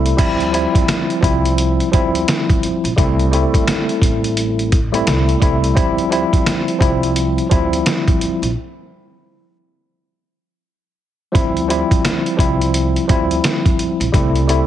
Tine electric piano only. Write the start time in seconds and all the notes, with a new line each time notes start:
Already playing: G3 A3 C4 E4
0.16 F3 G3 C4 E4
0.52 F3 G3 C4 E4
1.21 F3 G3 C4 E4
1.91 F3 G3 C4 E4
2.96 G3 A3 C4 E4
3.31 G3 A3 C4 E4
4.92 G3 A3 C4 E4
5.40 G3 A3 C4 E4
5.74 F3 G3 C4 E4
6.10 F3 G3 C4 E4
6.78 F3 G3 C4 E4
7.49 F3 G3 C4 E4
11.32 F3 G3 C4 E4
11.68 F3 G3 C4 E4
12.37 F3 G3 C4 E4
13.07 F3 G3 C4 E4
14.12 G3 A3 C4 E4
14.47 G3 A3 C4 E4